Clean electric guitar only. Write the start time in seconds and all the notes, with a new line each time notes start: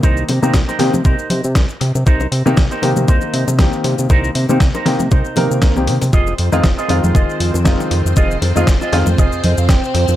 0.03 D#4 A#4 C5
0.42 D#4 A#4 C5
0.68 D#4 A#4 C5
1.05 D#4 A#4 C5
1.81 muted clean electric guitar stroke
1.95 muted clean electric guitar stroke
2.06 D#4 A#4 C5
2.45 D#4 A#4 C5
2.71 D#4 A#4 C5
3.08 D#4 A#4 C5
3.84 muted clean electric guitar stroke
3.98 muted clean electric guitar stroke
4.09 D#4 A#4 C5
4.49 D#4 A#4 C5
4.74 D#4 A#4 C5
5.11 D#4 A#4 C5
5.87 muted clean electric guitar stroke
6.02 muted clean electric guitar stroke
6.13 F4 G#4 D#5
6.52 F4 G#4 D#5
6.78 F4 G#4 D#5
7.15 F4 G#4 D#5
7.91 muted clean electric guitar stroke
8.05 muted clean electric guitar stroke
8.16 F4 G#4 D#5
8.56 F4 G#4 D#5
8.81 F4 G#4 D#5
9.18 F4 G#4 D#5
9.44 D#5
9.58 F5
9.70 G5
9.95 muted clean electric guitar stroke
10.09 muted clean electric guitar stroke